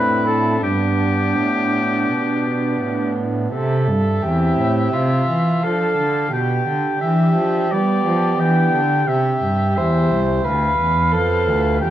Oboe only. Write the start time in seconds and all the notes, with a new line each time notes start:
Already playing: B4
0.26 A4
0.63 G4
3.52 E5
5.64 F5
6.33 G5
7.01 E5
7.72 D5
8.40 G5
9.08 E5
9.76 E5
10.44 F5
11.82 G5